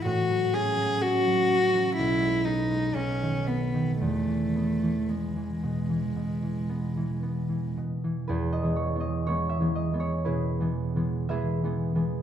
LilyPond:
<<
  \new Staff \with { instrumentName = "Cello" } { \time 4/4 \key e \major \tempo 4 = 60 fis'8 gis'8 fis'4 e'8 dis'8 cis'8 b8 | a4 gis2~ gis8 r8 | r1 | }
  \new Staff \with { instrumentName = "Harp" } { \time 4/4 \key e \major << { r1 | r1 | b'16 dis''16 cis''16 dis''16 cis''16 e''16 dis''16 cis''16 b'4 e''4 | } \\ { r1 | r1 | <e' gis'>2 <e' gis'>4 <gis' b'>4 | } >> }
  \new Staff \with { instrumentName = "Harp" } { \clef bass \time 4/4 \key e \major a,16 fis16 cis'16 fis16 cis'16 fis16 cis'16 fis16 b,,16 gis16 b16 gis16 b,,16 dis16 b16 dis16 | e,16 e16 b16 e16 b16 e16 b,16 e16 b,16 e16 b16 e16 b16 e16 b,16 e16 | \tuplet 3/2 { e,8 <e gis b>8 <e gis b>8 <e gis b>8 <e gis b>8 <e gis b>8 b,8 <e gis b>8 <e gis b>8 <e gis b>8 <e gis b>8 <e gis b>8 } | }
>>